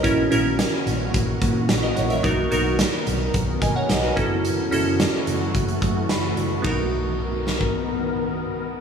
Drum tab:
RD |----------------|----------------|----------------|x---------------|
HH |x-x-x-x-x-x-x-xx|x-x-x-x-x-x-x-x-|x-x-x-x-xxx-x-x-|----------------|
SD |----o-------o---|----o-------o---|----o-------o---|------o---------|
BD |o-------o-o-----|o-------o-o---o-|--------o-o-----|o------o--------|